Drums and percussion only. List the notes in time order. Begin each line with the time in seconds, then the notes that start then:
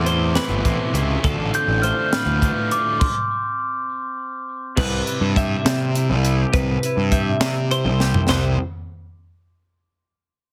0.06 closed hi-hat
0.35 snare, closed hi-hat
0.65 kick, closed hi-hat
0.95 closed hi-hat
1.24 kick, closed hi-hat
1.54 closed hi-hat
1.83 closed hi-hat
2.13 snare, closed hi-hat
2.42 kick, closed hi-hat
2.71 closed hi-hat
3.01 kick, crash
4.77 kick, crash
5.07 closed hi-hat
5.36 kick, closed hi-hat
5.66 snare, closed hi-hat
5.95 closed hi-hat
6.25 closed hi-hat
6.54 kick, closed hi-hat
6.83 closed hi-hat
7.12 kick, closed hi-hat
7.41 snare, closed hi-hat
7.71 closed hi-hat
8.00 snare
8.14 floor tom
8.29 snare, china